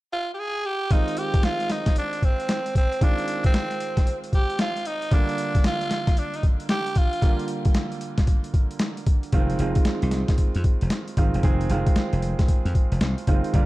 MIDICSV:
0, 0, Header, 1, 6, 480
1, 0, Start_track
1, 0, Tempo, 526316
1, 828, Time_signature, 4, 2, 24, 8
1, 12455, End_track
2, 0, Start_track
2, 0, Title_t, "Tenor saxophone"
2, 0, Program_c, 0, 66
2, 116, Note_on_c, 0, 65, 103
2, 296, Note_off_c, 0, 65, 0
2, 309, Note_on_c, 0, 67, 75
2, 357, Note_on_c, 0, 68, 104
2, 370, Note_off_c, 0, 67, 0
2, 599, Note_on_c, 0, 67, 107
2, 613, Note_off_c, 0, 68, 0
2, 842, Note_on_c, 0, 63, 93
2, 856, Note_off_c, 0, 67, 0
2, 1079, Note_on_c, 0, 67, 94
2, 1093, Note_off_c, 0, 63, 0
2, 1317, Note_on_c, 0, 65, 106
2, 1331, Note_off_c, 0, 67, 0
2, 1565, Note_on_c, 0, 63, 91
2, 1578, Note_off_c, 0, 65, 0
2, 1796, Note_off_c, 0, 63, 0
2, 1807, Note_on_c, 0, 62, 91
2, 2045, Note_on_c, 0, 60, 94
2, 2058, Note_off_c, 0, 62, 0
2, 2516, Note_off_c, 0, 60, 0
2, 2526, Note_on_c, 0, 60, 92
2, 2764, Note_on_c, 0, 62, 95
2, 2777, Note_off_c, 0, 60, 0
2, 3151, Note_off_c, 0, 62, 0
2, 3155, Note_on_c, 0, 60, 92
2, 3832, Note_off_c, 0, 60, 0
2, 3960, Note_on_c, 0, 67, 89
2, 4178, Note_off_c, 0, 67, 0
2, 4202, Note_on_c, 0, 65, 92
2, 4439, Note_on_c, 0, 63, 91
2, 4453, Note_off_c, 0, 65, 0
2, 4681, Note_on_c, 0, 62, 91
2, 4694, Note_off_c, 0, 63, 0
2, 5154, Note_off_c, 0, 62, 0
2, 5170, Note_on_c, 0, 65, 106
2, 5645, Note_on_c, 0, 62, 82
2, 5659, Note_off_c, 0, 65, 0
2, 5798, Note_on_c, 0, 63, 74
2, 5812, Note_off_c, 0, 62, 0
2, 5875, Note_off_c, 0, 63, 0
2, 6112, Note_on_c, 0, 67, 104
2, 6364, Note_on_c, 0, 65, 107
2, 6378, Note_off_c, 0, 67, 0
2, 6836, Note_off_c, 0, 65, 0
2, 12455, End_track
3, 0, Start_track
3, 0, Title_t, "Grand piano"
3, 0, Program_c, 1, 0
3, 824, Note_on_c, 1, 51, 66
3, 832, Note_on_c, 1, 56, 53
3, 838, Note_on_c, 1, 60, 58
3, 845, Note_on_c, 1, 65, 72
3, 973, Control_c, 1, 64, 127
3, 2710, Note_off_c, 1, 51, 0
3, 2713, Note_off_c, 1, 56, 0
3, 2717, Note_off_c, 1, 60, 0
3, 2720, Note_off_c, 1, 65, 0
3, 2740, Note_on_c, 1, 51, 62
3, 2747, Note_on_c, 1, 56, 59
3, 2755, Note_on_c, 1, 60, 59
3, 2762, Note_on_c, 1, 65, 71
3, 4628, Note_off_c, 1, 51, 0
3, 4631, Note_off_c, 1, 56, 0
3, 4635, Note_off_c, 1, 60, 0
3, 4639, Note_off_c, 1, 65, 0
3, 4661, Note_on_c, 1, 50, 66
3, 4669, Note_on_c, 1, 55, 58
3, 4676, Note_on_c, 1, 58, 59
3, 4681, Control_c, 1, 64, 0
3, 4685, Note_on_c, 1, 65, 72
3, 4822, Control_c, 1, 64, 127
3, 6548, Note_off_c, 1, 50, 0
3, 6552, Note_off_c, 1, 55, 0
3, 6555, Note_off_c, 1, 58, 0
3, 6560, Note_off_c, 1, 65, 0
3, 6579, Note_on_c, 1, 50, 64
3, 6586, Note_on_c, 1, 55, 59
3, 6593, Note_on_c, 1, 58, 62
3, 6601, Note_on_c, 1, 65, 73
3, 8467, Note_off_c, 1, 50, 0
3, 8471, Note_off_c, 1, 55, 0
3, 8474, Note_off_c, 1, 58, 0
3, 8478, Note_off_c, 1, 65, 0
3, 8509, Note_on_c, 1, 51, 86
3, 8515, Note_on_c, 1, 56, 77
3, 8516, Note_on_c, 1, 60, 75
3, 8518, Control_c, 1, 64, 0
3, 8521, Note_on_c, 1, 65, 92
3, 8657, Control_c, 1, 64, 127
3, 8738, Note_off_c, 1, 51, 0
3, 8741, Note_off_c, 1, 56, 0
3, 8741, Note_off_c, 1, 60, 0
3, 8744, Note_off_c, 1, 65, 0
3, 8752, Note_on_c, 1, 51, 76
3, 8760, Note_on_c, 1, 56, 74
3, 8760, Note_on_c, 1, 60, 68
3, 8764, Note_on_c, 1, 65, 86
3, 9667, Note_off_c, 1, 51, 0
3, 9670, Note_off_c, 1, 56, 0
3, 9671, Note_off_c, 1, 60, 0
3, 9672, Note_off_c, 1, 65, 0
3, 10189, Note_on_c, 1, 51, 72
3, 10194, Note_on_c, 1, 56, 64
3, 10196, Note_on_c, 1, 60, 61
3, 10200, Note_on_c, 1, 65, 84
3, 10411, Note_off_c, 1, 51, 0
3, 10415, Note_off_c, 1, 56, 0
3, 10420, Note_off_c, 1, 60, 0
3, 10423, Note_off_c, 1, 65, 0
3, 10424, Note_on_c, 1, 51, 84
3, 10429, Note_on_c, 1, 56, 75
3, 10434, Note_on_c, 1, 60, 79
3, 10435, Note_on_c, 1, 68, 98
3, 10655, Note_off_c, 1, 51, 0
3, 10658, Note_off_c, 1, 56, 0
3, 10660, Note_off_c, 1, 60, 0
3, 10660, Note_off_c, 1, 68, 0
3, 10669, Note_on_c, 1, 51, 75
3, 10672, Note_on_c, 1, 56, 73
3, 10677, Note_on_c, 1, 60, 70
3, 10682, Note_on_c, 1, 65, 90
3, 11585, Note_off_c, 1, 51, 0
3, 11587, Note_off_c, 1, 56, 0
3, 11589, Note_off_c, 1, 60, 0
3, 11591, Note_off_c, 1, 65, 0
3, 12108, Note_on_c, 1, 51, 76
3, 12112, Note_on_c, 1, 56, 67
3, 12117, Note_on_c, 1, 60, 64
3, 12117, Note_on_c, 1, 65, 81
3, 12337, Note_off_c, 1, 51, 0
3, 12339, Note_off_c, 1, 56, 0
3, 12342, Note_off_c, 1, 60, 0
3, 12342, Note_off_c, 1, 65, 0
3, 12349, Note_on_c, 1, 50, 87
3, 12353, Note_on_c, 1, 55, 80
3, 12356, Note_on_c, 1, 58, 78
3, 12361, Control_c, 1, 64, 0
3, 12361, Note_on_c, 1, 65, 94
3, 12455, Note_off_c, 1, 50, 0
3, 12455, Note_off_c, 1, 55, 0
3, 12455, Note_off_c, 1, 58, 0
3, 12455, Note_off_c, 1, 65, 0
3, 12455, End_track
4, 0, Start_track
4, 0, Title_t, "Slap bass"
4, 0, Program_c, 2, 36
4, 8507, Note_on_c, 2, 29, 88
4, 8694, Note_off_c, 2, 29, 0
4, 8747, Note_on_c, 2, 29, 93
4, 8868, Note_off_c, 2, 29, 0
4, 9143, Note_on_c, 2, 36, 86
4, 9329, Note_off_c, 2, 36, 0
4, 9626, Note_on_c, 2, 41, 87
4, 9691, Note_off_c, 2, 41, 0
4, 9867, Note_on_c, 2, 29, 76
4, 9932, Note_off_c, 2, 29, 0
4, 10189, Note_on_c, 2, 32, 86
4, 10309, Note_off_c, 2, 32, 0
4, 10345, Note_on_c, 2, 28, 83
4, 10410, Note_off_c, 2, 28, 0
4, 10426, Note_on_c, 2, 29, 101
4, 10614, Note_off_c, 2, 29, 0
4, 10668, Note_on_c, 2, 29, 96
4, 10788, Note_off_c, 2, 29, 0
4, 11061, Note_on_c, 2, 29, 85
4, 11248, Note_off_c, 2, 29, 0
4, 11539, Note_on_c, 2, 41, 82
4, 11607, Note_off_c, 2, 41, 0
4, 11780, Note_on_c, 2, 29, 80
4, 11847, Note_off_c, 2, 29, 0
4, 11863, Note_on_c, 2, 36, 86
4, 11985, Note_off_c, 2, 36, 0
4, 12108, Note_on_c, 2, 30, 89
4, 12228, Note_off_c, 2, 30, 0
4, 12347, Note_on_c, 2, 31, 103
4, 12455, Note_off_c, 2, 31, 0
4, 12455, End_track
5, 0, Start_track
5, 0, Title_t, "Muted slap bass strokes"
5, 8987, Note_on_c, 9, 29, 43
5, 9078, Note_off_c, 9, 29, 0
5, 9467, Note_on_c, 9, 29, 46
5, 9558, Note_off_c, 9, 29, 0
5, 10906, Note_on_c, 9, 29, 47
5, 10997, Note_off_c, 9, 29, 0
5, 11386, Note_on_c, 9, 29, 48
5, 11477, Note_off_c, 9, 29, 0
5, 12455, End_track
6, 0, Start_track
6, 0, Title_t, "Drums"
6, 826, Note_on_c, 9, 42, 72
6, 827, Note_on_c, 9, 36, 107
6, 917, Note_off_c, 9, 42, 0
6, 918, Note_off_c, 9, 36, 0
6, 984, Note_on_c, 9, 42, 48
6, 1064, Note_off_c, 9, 42, 0
6, 1064, Note_on_c, 9, 42, 78
6, 1155, Note_off_c, 9, 42, 0
6, 1220, Note_on_c, 9, 42, 61
6, 1222, Note_on_c, 9, 36, 99
6, 1304, Note_off_c, 9, 42, 0
6, 1304, Note_on_c, 9, 42, 67
6, 1306, Note_on_c, 9, 38, 96
6, 1313, Note_off_c, 9, 36, 0
6, 1395, Note_off_c, 9, 42, 0
6, 1398, Note_off_c, 9, 38, 0
6, 1460, Note_on_c, 9, 42, 44
6, 1546, Note_off_c, 9, 42, 0
6, 1546, Note_on_c, 9, 42, 73
6, 1547, Note_on_c, 9, 38, 67
6, 1637, Note_off_c, 9, 42, 0
6, 1638, Note_off_c, 9, 38, 0
6, 1698, Note_on_c, 9, 38, 61
6, 1700, Note_on_c, 9, 42, 60
6, 1701, Note_on_c, 9, 36, 86
6, 1787, Note_off_c, 9, 42, 0
6, 1787, Note_on_c, 9, 42, 74
6, 1790, Note_off_c, 9, 38, 0
6, 1793, Note_off_c, 9, 36, 0
6, 1878, Note_off_c, 9, 42, 0
6, 1942, Note_on_c, 9, 42, 51
6, 2029, Note_on_c, 9, 36, 75
6, 2032, Note_off_c, 9, 42, 0
6, 2032, Note_on_c, 9, 42, 46
6, 2120, Note_off_c, 9, 36, 0
6, 2123, Note_off_c, 9, 42, 0
6, 2186, Note_on_c, 9, 42, 46
6, 2268, Note_off_c, 9, 42, 0
6, 2268, Note_on_c, 9, 42, 80
6, 2271, Note_on_c, 9, 38, 93
6, 2360, Note_off_c, 9, 42, 0
6, 2362, Note_off_c, 9, 38, 0
6, 2426, Note_on_c, 9, 42, 51
6, 2511, Note_on_c, 9, 36, 87
6, 2514, Note_off_c, 9, 42, 0
6, 2514, Note_on_c, 9, 42, 67
6, 2602, Note_off_c, 9, 36, 0
6, 2605, Note_off_c, 9, 42, 0
6, 2668, Note_on_c, 9, 42, 47
6, 2749, Note_on_c, 9, 36, 111
6, 2750, Note_off_c, 9, 42, 0
6, 2750, Note_on_c, 9, 42, 72
6, 2840, Note_off_c, 9, 36, 0
6, 2841, Note_off_c, 9, 42, 0
6, 2904, Note_on_c, 9, 42, 47
6, 2989, Note_off_c, 9, 42, 0
6, 2989, Note_on_c, 9, 42, 77
6, 3081, Note_off_c, 9, 42, 0
6, 3138, Note_on_c, 9, 42, 57
6, 3142, Note_on_c, 9, 36, 99
6, 3228, Note_off_c, 9, 42, 0
6, 3228, Note_on_c, 9, 42, 75
6, 3230, Note_on_c, 9, 38, 98
6, 3233, Note_off_c, 9, 36, 0
6, 3319, Note_off_c, 9, 42, 0
6, 3321, Note_off_c, 9, 38, 0
6, 3382, Note_on_c, 9, 42, 45
6, 3470, Note_off_c, 9, 42, 0
6, 3470, Note_on_c, 9, 42, 72
6, 3561, Note_off_c, 9, 42, 0
6, 3620, Note_on_c, 9, 38, 60
6, 3621, Note_on_c, 9, 36, 92
6, 3622, Note_on_c, 9, 42, 60
6, 3710, Note_off_c, 9, 42, 0
6, 3710, Note_on_c, 9, 42, 73
6, 3711, Note_off_c, 9, 38, 0
6, 3712, Note_off_c, 9, 36, 0
6, 3801, Note_off_c, 9, 42, 0
6, 3864, Note_on_c, 9, 42, 51
6, 3947, Note_on_c, 9, 36, 78
6, 3948, Note_off_c, 9, 42, 0
6, 3948, Note_on_c, 9, 42, 47
6, 4038, Note_off_c, 9, 36, 0
6, 4039, Note_off_c, 9, 42, 0
6, 4102, Note_on_c, 9, 42, 44
6, 4183, Note_off_c, 9, 42, 0
6, 4183, Note_on_c, 9, 42, 73
6, 4186, Note_on_c, 9, 38, 98
6, 4274, Note_off_c, 9, 42, 0
6, 4277, Note_off_c, 9, 38, 0
6, 4346, Note_on_c, 9, 42, 49
6, 4427, Note_off_c, 9, 42, 0
6, 4427, Note_on_c, 9, 42, 69
6, 4518, Note_off_c, 9, 42, 0
6, 4578, Note_on_c, 9, 42, 46
6, 4665, Note_off_c, 9, 42, 0
6, 4665, Note_on_c, 9, 36, 118
6, 4665, Note_on_c, 9, 42, 71
6, 4756, Note_off_c, 9, 36, 0
6, 4756, Note_off_c, 9, 42, 0
6, 4823, Note_on_c, 9, 42, 46
6, 4907, Note_off_c, 9, 42, 0
6, 4907, Note_on_c, 9, 42, 82
6, 4998, Note_off_c, 9, 42, 0
6, 5061, Note_on_c, 9, 36, 98
6, 5061, Note_on_c, 9, 42, 64
6, 5145, Note_off_c, 9, 42, 0
6, 5145, Note_on_c, 9, 42, 75
6, 5147, Note_on_c, 9, 38, 100
6, 5153, Note_off_c, 9, 36, 0
6, 5236, Note_off_c, 9, 42, 0
6, 5238, Note_off_c, 9, 38, 0
6, 5301, Note_on_c, 9, 42, 45
6, 5387, Note_off_c, 9, 42, 0
6, 5387, Note_on_c, 9, 38, 70
6, 5387, Note_on_c, 9, 42, 75
6, 5478, Note_off_c, 9, 42, 0
6, 5479, Note_off_c, 9, 38, 0
6, 5537, Note_on_c, 9, 38, 61
6, 5539, Note_on_c, 9, 36, 96
6, 5539, Note_on_c, 9, 42, 57
6, 5626, Note_off_c, 9, 42, 0
6, 5626, Note_on_c, 9, 42, 76
6, 5628, Note_off_c, 9, 38, 0
6, 5630, Note_off_c, 9, 36, 0
6, 5717, Note_off_c, 9, 42, 0
6, 5778, Note_on_c, 9, 42, 52
6, 5866, Note_on_c, 9, 36, 78
6, 5867, Note_off_c, 9, 42, 0
6, 5867, Note_on_c, 9, 42, 46
6, 5957, Note_off_c, 9, 36, 0
6, 5958, Note_off_c, 9, 42, 0
6, 6018, Note_on_c, 9, 42, 49
6, 6100, Note_off_c, 9, 42, 0
6, 6100, Note_on_c, 9, 42, 71
6, 6102, Note_on_c, 9, 38, 99
6, 6191, Note_off_c, 9, 42, 0
6, 6194, Note_off_c, 9, 38, 0
6, 6260, Note_on_c, 9, 42, 52
6, 6342, Note_off_c, 9, 42, 0
6, 6342, Note_on_c, 9, 42, 67
6, 6346, Note_on_c, 9, 36, 88
6, 6433, Note_off_c, 9, 42, 0
6, 6438, Note_off_c, 9, 36, 0
6, 6500, Note_on_c, 9, 42, 47
6, 6587, Note_off_c, 9, 42, 0
6, 6587, Note_on_c, 9, 36, 111
6, 6587, Note_on_c, 9, 42, 72
6, 6678, Note_off_c, 9, 36, 0
6, 6678, Note_off_c, 9, 42, 0
6, 6743, Note_on_c, 9, 42, 46
6, 6820, Note_off_c, 9, 42, 0
6, 6820, Note_on_c, 9, 42, 74
6, 6911, Note_off_c, 9, 42, 0
6, 6975, Note_on_c, 9, 42, 59
6, 6980, Note_on_c, 9, 36, 101
6, 7063, Note_off_c, 9, 42, 0
6, 7063, Note_on_c, 9, 42, 69
6, 7065, Note_on_c, 9, 38, 98
6, 7072, Note_off_c, 9, 36, 0
6, 7154, Note_off_c, 9, 42, 0
6, 7156, Note_off_c, 9, 38, 0
6, 7220, Note_on_c, 9, 42, 44
6, 7305, Note_off_c, 9, 42, 0
6, 7305, Note_on_c, 9, 42, 71
6, 7396, Note_off_c, 9, 42, 0
6, 7457, Note_on_c, 9, 38, 65
6, 7459, Note_on_c, 9, 36, 91
6, 7459, Note_on_c, 9, 42, 62
6, 7544, Note_off_c, 9, 42, 0
6, 7544, Note_on_c, 9, 42, 71
6, 7546, Note_off_c, 9, 36, 0
6, 7546, Note_on_c, 9, 36, 82
6, 7548, Note_off_c, 9, 38, 0
6, 7635, Note_off_c, 9, 42, 0
6, 7637, Note_off_c, 9, 36, 0
6, 7697, Note_on_c, 9, 42, 50
6, 7786, Note_on_c, 9, 36, 75
6, 7787, Note_off_c, 9, 42, 0
6, 7787, Note_on_c, 9, 42, 49
6, 7877, Note_off_c, 9, 36, 0
6, 7878, Note_off_c, 9, 42, 0
6, 7941, Note_on_c, 9, 42, 49
6, 8019, Note_off_c, 9, 42, 0
6, 8019, Note_on_c, 9, 42, 82
6, 8021, Note_on_c, 9, 38, 108
6, 8110, Note_off_c, 9, 42, 0
6, 8113, Note_off_c, 9, 38, 0
6, 8182, Note_on_c, 9, 42, 48
6, 8267, Note_off_c, 9, 42, 0
6, 8267, Note_on_c, 9, 36, 90
6, 8267, Note_on_c, 9, 42, 69
6, 8358, Note_off_c, 9, 42, 0
6, 8359, Note_off_c, 9, 36, 0
6, 8418, Note_on_c, 9, 42, 46
6, 8504, Note_off_c, 9, 42, 0
6, 8504, Note_on_c, 9, 42, 76
6, 8506, Note_on_c, 9, 36, 110
6, 8595, Note_off_c, 9, 42, 0
6, 8597, Note_off_c, 9, 36, 0
6, 8660, Note_on_c, 9, 42, 47
6, 8744, Note_off_c, 9, 42, 0
6, 8744, Note_on_c, 9, 42, 73
6, 8835, Note_off_c, 9, 42, 0
6, 8894, Note_on_c, 9, 42, 60
6, 8900, Note_on_c, 9, 36, 96
6, 8982, Note_off_c, 9, 42, 0
6, 8982, Note_on_c, 9, 42, 74
6, 8984, Note_on_c, 9, 38, 100
6, 8992, Note_off_c, 9, 36, 0
6, 9073, Note_off_c, 9, 42, 0
6, 9075, Note_off_c, 9, 38, 0
6, 9140, Note_on_c, 9, 42, 49
6, 9223, Note_off_c, 9, 42, 0
6, 9223, Note_on_c, 9, 42, 73
6, 9224, Note_on_c, 9, 38, 61
6, 9314, Note_off_c, 9, 42, 0
6, 9315, Note_off_c, 9, 38, 0
6, 9379, Note_on_c, 9, 38, 61
6, 9380, Note_on_c, 9, 36, 86
6, 9381, Note_on_c, 9, 42, 62
6, 9465, Note_off_c, 9, 42, 0
6, 9465, Note_on_c, 9, 42, 78
6, 9466, Note_off_c, 9, 36, 0
6, 9466, Note_on_c, 9, 36, 77
6, 9470, Note_off_c, 9, 38, 0
6, 9556, Note_off_c, 9, 42, 0
6, 9557, Note_off_c, 9, 36, 0
6, 9618, Note_on_c, 9, 42, 50
6, 9704, Note_off_c, 9, 42, 0
6, 9704, Note_on_c, 9, 42, 53
6, 9706, Note_on_c, 9, 36, 83
6, 9795, Note_off_c, 9, 42, 0
6, 9797, Note_off_c, 9, 36, 0
6, 9860, Note_on_c, 9, 42, 49
6, 9941, Note_off_c, 9, 42, 0
6, 9941, Note_on_c, 9, 42, 78
6, 9943, Note_on_c, 9, 38, 92
6, 10032, Note_off_c, 9, 42, 0
6, 10035, Note_off_c, 9, 38, 0
6, 10101, Note_on_c, 9, 42, 49
6, 10187, Note_off_c, 9, 42, 0
6, 10187, Note_on_c, 9, 42, 67
6, 10188, Note_on_c, 9, 36, 88
6, 10278, Note_off_c, 9, 42, 0
6, 10279, Note_off_c, 9, 36, 0
6, 10344, Note_on_c, 9, 42, 45
6, 10426, Note_off_c, 9, 42, 0
6, 10426, Note_on_c, 9, 42, 72
6, 10427, Note_on_c, 9, 36, 114
6, 10517, Note_off_c, 9, 42, 0
6, 10518, Note_off_c, 9, 36, 0
6, 10586, Note_on_c, 9, 42, 48
6, 10667, Note_off_c, 9, 42, 0
6, 10667, Note_on_c, 9, 42, 77
6, 10758, Note_off_c, 9, 42, 0
6, 10821, Note_on_c, 9, 42, 58
6, 10822, Note_on_c, 9, 36, 102
6, 10905, Note_off_c, 9, 42, 0
6, 10905, Note_on_c, 9, 42, 70
6, 10907, Note_on_c, 9, 38, 100
6, 10913, Note_off_c, 9, 36, 0
6, 10996, Note_off_c, 9, 42, 0
6, 10998, Note_off_c, 9, 38, 0
6, 11061, Note_on_c, 9, 42, 46
6, 11149, Note_off_c, 9, 42, 0
6, 11149, Note_on_c, 9, 42, 70
6, 11240, Note_off_c, 9, 42, 0
6, 11300, Note_on_c, 9, 36, 93
6, 11300, Note_on_c, 9, 38, 64
6, 11301, Note_on_c, 9, 42, 59
6, 11385, Note_off_c, 9, 42, 0
6, 11385, Note_on_c, 9, 42, 76
6, 11386, Note_off_c, 9, 36, 0
6, 11386, Note_on_c, 9, 36, 76
6, 11391, Note_off_c, 9, 38, 0
6, 11477, Note_off_c, 9, 36, 0
6, 11477, Note_off_c, 9, 42, 0
6, 11542, Note_on_c, 9, 42, 48
6, 11626, Note_on_c, 9, 36, 78
6, 11629, Note_off_c, 9, 42, 0
6, 11629, Note_on_c, 9, 42, 49
6, 11717, Note_off_c, 9, 36, 0
6, 11720, Note_off_c, 9, 42, 0
6, 11781, Note_on_c, 9, 42, 51
6, 11863, Note_off_c, 9, 42, 0
6, 11863, Note_on_c, 9, 42, 73
6, 11866, Note_on_c, 9, 38, 105
6, 11954, Note_off_c, 9, 42, 0
6, 11957, Note_off_c, 9, 38, 0
6, 12020, Note_on_c, 9, 42, 51
6, 12104, Note_off_c, 9, 42, 0
6, 12104, Note_on_c, 9, 42, 65
6, 12107, Note_on_c, 9, 36, 95
6, 12196, Note_off_c, 9, 42, 0
6, 12198, Note_off_c, 9, 36, 0
6, 12260, Note_on_c, 9, 42, 48
6, 12346, Note_off_c, 9, 42, 0
6, 12346, Note_on_c, 9, 36, 114
6, 12346, Note_on_c, 9, 42, 75
6, 12437, Note_off_c, 9, 36, 0
6, 12437, Note_off_c, 9, 42, 0
6, 12455, End_track
0, 0, End_of_file